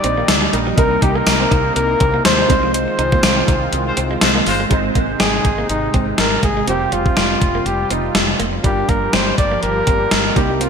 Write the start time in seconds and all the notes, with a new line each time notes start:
Already playing: A#2 D#3 G3 A#3 D#4 A#4 D5
0.04 A#1 C4, closed hi-hat
0.18 A#3
0.28 D2, snare, closed hi-hat, tambourine
0.42 G3
0.52 A#1 G3 A#3 D4 D#4 A#4, muted clean electric guitar stroke, closed hi-hat
0.67 F3
0.76 C2 C3 G3 A#3 C4 D#4 A#4, kick, closed hi-hat
0.91 muted clean electric guitar stroke
1.02 C2 D#4 G4, kick, closed hi-hat
1.16 A#3 A#4
1.26 C2, muted clean electric guitar stroke, snare, closed hi-hat, tambourine
1.40 C4
1.51 C2 D#4, kick, closed hi-hat
1.76 C2 A#4, muted clean electric guitar stroke, closed hi-hat
2.00 C2 C4, kick, closed hi-hat
2.14 A#3
2.25 D#2 C5, snare, closed hi-hat, tambourine
2.39 G3
2.48 C2 C3 D#3 G#3 C4 D#4 F4 C5, muted clean electric guitar stroke, kick, closed hi-hat
2.63 F3
2.74 C5, closed hi-hat
2.88 muted clean electric guitar stroke
2.99 C2 D#4, closed hi-hat
3.12 A#3, kick
3.23 C2, muted clean electric guitar stroke, snare, closed hi-hat, tambourine
3.37 C4
3.48 C2 D#4, kick, closed hi-hat
3.73 C2, muted clean electric guitar stroke, closed hi-hat
3.86 G#3 F4 C5
3.97 C2 C4, closed hi-hat
4.11 G#3
4.21 C2 G#3 F4 C5, snare, closed hi-hat, tambourine
4.35 A#3
4.46 G1 G#3 F4 C5, muted clean electric guitar stroke, open hi-hat
4.60 G#3
4.70 G#1 G#2 C3 G#3 C4 D#4 C5, kick, closed hi-hat
4.84 muted clean electric guitar stroke
4.95 G#1 A#3, kick, closed hi-hat
5.20 G#1 C4 G#4, snare, closed hi-hat
5.45 G#1, muted clean electric guitar stroke, kick, closed hi-hat
5.58 A#3
5.69 G#1 D#4, closed hi-hat
5.94 G#1 C4, kick, closed hi-hat
6.18 G#1 A#4, muted clean electric guitar stroke, snare, closed hi-hat
6.43 G#1 A#3 G#4, kick, closed hi-hat
6.57 G#3
6.67 F1 F3 G3 C4 F4 G4 C5, closed hi-hat
6.81 muted clean electric guitar stroke
6.92 F1 G3 F4, closed hi-hat
7.06 kick
7.17 F1 C4, snare, closed hi-hat
7.41 F1, muted clean electric guitar stroke, kick, closed hi-hat
7.55 A#3
7.66 F1 G4, closed hi-hat
7.90 F1 C4 D#4, closed hi-hat
8.15 F1, muted clean electric guitar stroke, snare, closed hi-hat
8.40 F1 A#3, closed hi-hat
8.53 G3
8.63 G1 G2 F3 G3 A#3 D4 F4 G4 A#4, kick, closed hi-hat
8.78 muted clean electric guitar stroke
8.89 G1 A#3 A#4, kick, closed hi-hat
9.13 G1 C4 C5, snare, closed hi-hat
9.38 G1 D5, muted clean electric guitar stroke, kick, closed hi-hat
9.52 A#3
9.63 G1 A#4, closed hi-hat
9.87 G1 C4, kick, closed hi-hat
10.11 G1, muted clean electric guitar stroke, snare, closed hi-hat
10.35 C2 C3 G3 A#3 C4 D#4 G4 A#4, kick, closed hi-hat
10.50 G3
10.56 G4
10.61 C4 F4, closed hi-hat